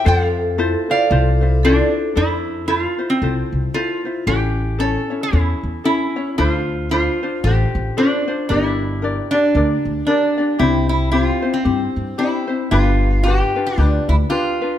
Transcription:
Already playing: C5
0.05 F2 F4 A4 C5 F5
0.58 E4 F4 A4 C5
0.90 E4 F4 C5 D5 F5
1.10 C2 E4 F4 A4 C5
1.41 E4 F4 C5
1.63 D4 E4 F4 A4 C5
2.15 F2 E4 A4 C5
2.68 E4 F4 A4 C5
2.79 F4
2.98 E4 F4 C5
3.10 C4
3.22 C2 E4 F4 A4 C5
3.52 C2
3.74 E4 F4 A4 C5
4.05 E4 F4 C5
4.27 A1 C#4 E4 G4 A4 C#5
4.79 C#4 E4 A4 C#5
5.10 C#4 E4 C#5
5.23 E4
5.32 E2 C#4 E4 A4 C#5
5.63 E2
5.84 C#4 E4 A4 C#5
6.16 C#4 E4 C#5
6.38 D2 D4 E4 F4 A4 C5
6.49 F4
6.91 D4 F4 A4 C5
7.23 D4 F4 C5
7.44 A1 D4 F4 G4 A4 C5
7.75 A1
7.97 D4 F4 A4 C5
8.28 D4 F4 C5
8.49 G1 D4 D#4 G4 A#4 D5
8.66 E4
9.02 D4 G4 A#4 D5
9.31 D4 G4 D5
9.55 D2 D4 G4 A#4 D5
9.85 D2
10.07 D4 G4 A#4 D5
10.38 D4 G4 D5
10.59 C2 C4 E4 G4 C5
10.89 E4
11.12 C4 E4 G4 C5
11.23 F4
11.42 C4 E4 C5
11.54 C4
11.65 G2 C4 E4 G4 C5
11.96 G2
12.18 C4 E4 G4 C5
12.47 C4 E4 C5
12.71 G1 D4 F4 G4 B4
13.23 D4 F4 F#4 G4
13.28 B4
13.40 G4
13.56 D4 F4 B4
13.66 D4
13.78 D2 D4 F4 G4 B4
14.08 D2 E4
14.29 D4 F4 G4 B4
14.62 D4 F4 B4

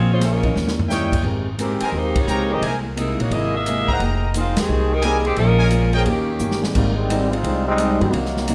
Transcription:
Already playing: A#1 C#4 G#4 C5
0.12 G#3 C#4 F4 C5
0.20 A#3 C#4 G#4 C5, snare, hi-hat pedal, ride
0.24 G#3 F4 A#4
0.43 E3 A#3 C#4 D#4 A#4, kick, ride
0.55 D#2 D#3 G3 C#4 E4, snare
0.68 snare
0.79 floor tom
0.88 D#3 G3 C#4 E4 C#5 D#5 E5 G5, snare, hi-hat pedal
1.12 kick, crash
1.22 G#1 G#3 C4 G4 A#4
1.58 D#3 G#3 A#3 C4 G4 A#4, hi-hat pedal, ride
1.80 A#4 C5 G5 G#5, muted upright bass stroke, ride
1.85 G3 C4 D#4 A#4
1.92 D#2 G#3 C4 G4 A#4
1.97 A#3 D#4 G4 C5
2.16 kick, ride
2.20 A#3 D#4 G4 C#5
2.26 C#2 G#3 C4 G4 A#4 C5 G5 A#5, hi-hat pedal
2.50 E3 A#3 C4 D#4 G4 G#4 A#4 D#5
2.61 C2 C3 G#3 A#3 E4 A#4 C5 E5 G#5, ride
2.96 C3 G#3 A#3 D#4 E4 A#4, hi-hat pedal, ride
3.19 A#1 A#3 D#4 F#4 C#5, ride
3.30 G#1 C3 G#3 A#3 E4 G#4 D#5, ride
3.34 A#3 E4
3.55 A#3 G#4 D#5 E5
3.66 C3 G#3 A#3 E4, hi-hat pedal, ride
3.87 D#4 G#4 A#4 C5 D#5 G5 A#5, kick
3.91 F#5
4.00 F1 F3 A#3 D#4 G#4, ride
4.34 F3 G#3 A#3 C4 D#4 F4 G#4, hi-hat pedal, ride
4.57 D#2 D#3 C4 G4 G#4, snare, ride
4.67 C2 F3 A#3 D#4 G#4
4.93 G#3 D#4 G4 A#4
5.02 D#3 F3 G3 A#3 C4 D#4 G#4 A#4 D#5 G5 G#5, hi-hat pedal, ride
5.25 D#3 G#3 C4 G4, ride
5.36 A#1 A#2 F3 G#3 C#4 F4 A#4, ride
5.40 C#4
5.59 A#4 C#5 F5 G#5
5.70 A#2 F3 G#3 C#4, hi-hat pedal, ride
5.93 F3 A#3 C#4 G#4 A#4 C#5 D#5 G5, ride
6.05 D#2 D#3 A#3 C#4 G4, ride
6.09 D#3 A#3 C#4 G4
6.39 G1 D#3 A#3 C#4 G4, hi-hat pedal
6.51 snare
6.62 D#3 G3 G#3 C4 G4, snare
6.73 G#1 G#2 C3 D#3 G3 A#3 C4 D#4, kick, crash
6.95 D#3 G3 G#3 C4
7.09 G#2 G3 C4 D#4, hi-hat pedal, ride
7.31 G#3 C4 D#4 F4, ride
7.43 C2 G#2 G3 C4 D#4, ride
7.66 G3 G#3 C4 D#4
7.77 G#2 G3 C4 D#4, hi-hat pedal, ride
8.00 G2 D#3 F#3 G3 G#3 A#3 C4 F#4, ride
8.12 C2 C3 D#3 F#3 A#3 D#4, ride
8.25 snare
8.37 snare
8.47 C3 F#3 A#3 D#4, hi-hat pedal, ride

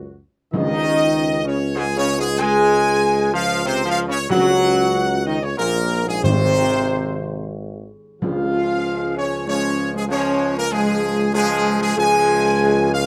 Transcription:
Already playing: C#2 F#2 F#3 F#4
0.53 C#2 C#3 D#3 D#4 D#5
1.44 C#3 C#4 C#5
1.75 G#2 G#3 G#4
1.96 C#3 C#4 C#5
2.17 G#2 G#3 G#4
2.40 G#3 G#4 G#5
3.33 F3 F4 F5
3.65 C3 C4 C5
3.86 F3 F4 F5
4.08 C#3 C#4 C#5
4.30 C#2 C#3 F#3 F#4 F#5
5.26 D#3 D#4 D#5
5.41 C#3 C#4 C#5
5.57 A#1 A#2 A#3 A#4
6.06 G#2 G#3 G#4
6.22 G#1 G#2 C3 C4 C5
8.21 C#2 C#3 F3 G#3 F4 F5
9.16 C#4 C#5
9.47 F3 G#3 C#4 C#5
9.95 G#3 G#4
10.09 F3 G#3 C#4 C#5
10.57 A#3 A#4
10.71 F3 G#3 G#4
11.33 F3 G#3 G#4
11.80 G#3 G#4
11.96 C#2 F3 G#3 G#4 G#5
12.91 F4 F5

